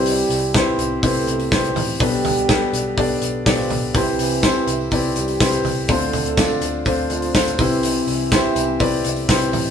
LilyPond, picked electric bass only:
\new Staff \with { instrumentName = "Picked electric bass" } { \clef bass \time 4/4 \key c \major \tempo 4 = 124 c,8 c,8. r16 c,8 c,8 c,8 c,8 a,,8 | b,,8 b,,8. r16 b,,8 b,,8 b,,8 b,,8 b,,8 | c,8 c,8. r16 c,8 c,8 c,8 c,8 c,8 | d,8 d,8. r16 d,8 d,8 d,8 d,8 c,8~ |
c,8 c,8. r16 c,8 c,8 c,8 c,8 a,,8 | }